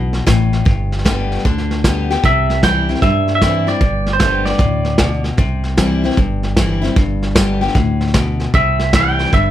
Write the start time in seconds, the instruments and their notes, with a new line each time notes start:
Already playing: fingered electric bass B1, steel-string acoustic guitar B2
0.13 snare
0.26 fingered electric bass A1, steel-string acoustic guitar A2, kick, snare, hi-hat pedal
0.53 snare
0.65 fingered electric bass G1, steel-string acoustic guitar G2, kick, snare
0.92 snare
0.99 snare
1.05 steel-string acoustic guitar D3 G3 B3 G4, kick, snare, hi-hat pedal
1.32 snare
1.39 snare
1.45 fingered electric bass D2, steel-string acoustic guitar D3, kick, snare
1.58 snare
1.71 snare
1.84 steel-string acoustic guitar D3 G3 B3 G4, kick, snare, hi-hat pedal
2.10 steel-string acoustic guitar B3 G4, snare
2.24 fingered electric bass C2, steel-string acoustic guitar C3, clean electric guitar E5, kick, snare
2.50 snare
2.63 steel-string acoustic guitar E3 G3 C4 E4, clean electric guitar G5, kick, snare, hi-hat pedal
2.89 steel-string acoustic guitar C4 E4, snare
2.95 snare
3.02 fingered electric bass G2, steel-string acoustic guitar G2, clean electric guitar E5, kick, snare
3.28 snare
3.35 clean electric guitar E5
3.42 steel-string acoustic guitar E3 G3 C4 E4, kick, snare, hi-hat pedal
3.67 steel-string acoustic guitar C4 E4, clean electric guitar D5, snare
3.81 fingered electric bass G1, steel-string acoustic guitar G2, kick, snare
4.06 snare
4.13 clean electric guitar C5
4.19 steel-string acoustic guitar D3 G3 B3 G4, kick, snare, hi-hat pedal
4.45 clean electric guitar D5, snare
4.52 snare
4.58 fingered electric bass D2, steel-string acoustic guitar A2, kick, snare
4.85 snare
4.98 steel-string acoustic guitar B2, kick, snare, hi-hat pedal
5.24 snare
5.37 fingered electric bass C2, steel-string acoustic guitar C3, kick, snare
5.64 snare
5.77 steel-string acoustic guitar E3 G3 C4 E4, kick, snare, hi-hat pedal
6.04 steel-string acoustic guitar C4 E4, snare
6.11 snare
6.17 fingered electric bass G1, steel-string acoustic guitar G2, kick, snare
6.43 snare
6.57 steel-string acoustic guitar E3 G3 C4 E4, kick, snare, hi-hat pedal
6.82 steel-string acoustic guitar C4 E4, snare
6.96 fingered electric bass G1, steel-string acoustic guitar G2, kick, snare
7.22 snare
7.35 steel-string acoustic guitar D3 G3 B3 G4, kick, snare, hi-hat pedal
7.61 steel-string acoustic guitar B3 G4, snare
7.68 snare
7.75 fingered electric bass D2, steel-string acoustic guitar A2, kick, snare
8.01 snare
8.07 snare
8.14 steel-string acoustic guitar B2, kick, snare, hi-hat pedal
8.40 snare
8.54 fingered electric bass C2, steel-string acoustic guitar C3, clean electric guitar E5, kick, snare
8.79 snare
8.93 steel-string acoustic guitar E3 G3 C4 E4, clean electric guitar G5, kick, snare, hi-hat pedal
9.19 snare
9.26 snare
9.32 fingered electric bass G1, steel-string acoustic guitar G2, clean electric guitar E5, kick, snare